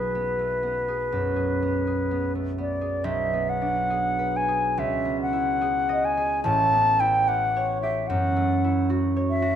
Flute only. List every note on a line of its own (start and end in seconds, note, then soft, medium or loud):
0.00 2.33 B4 medium
2.61 3.06 D5 soft
3.05 3.51 E5 medium
3.49 4.38 F#5 medium
4.37 4.80 G#5 medium
4.79 5.20 E5 medium
5.22 6.06 F#5 medium
6.05 6.43 G#5 medium
6.44 7.01 A5 medium
7.00 7.30 G5 medium
7.28 7.82 F#5 medium
7.82 8.09 E5 medium
8.07 8.89 F#5 medium
9.30 9.55 E5 medium